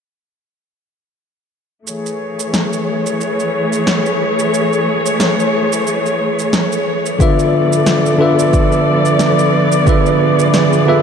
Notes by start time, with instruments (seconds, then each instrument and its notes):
1.87 string section E3 A3 G#4 C#5, shaker
2.06 shaker
2.40 shaker
2.54 snare, shaker
2.73 shaker
3.06 shaker
3.21 shaker
3.40 shaker
3.73 shaker
3.87 snare, shaker
4.06 shaker
4.39 shaker
4.54 shaker
4.73 shaker
5.06 shaker
5.20 snare, shaker
5.40 shaker
5.72 shaker
5.87 shaker
6.06 shaker
6.39 shaker
6.53 snare, shaker
6.72 shaker
7.06 shaker
7.19 tine electric piano D3 D4 F4 B4 E5, string section F3 B3 A4 D5, kick, shaker
7.39 shaker
7.73 shaker
7.86 snare, shaker
8.06 shaker
8.18 tine electric piano D3 D4 F4 B4
8.22 tine electric piano E5
8.39 shaker
8.53 kick, shaker
8.72 shaker
9.05 shaker
9.19 snare, shaker
9.39 shaker
9.72 shaker
9.86 tine electric piano D3 D4 F4 B4 E5, string section G#4, kick, shaker
10.06 shaker
10.39 shaker
10.54 snare, shaker
10.73 shaker
10.86 tine electric piano D3 D4 F4 B4 E5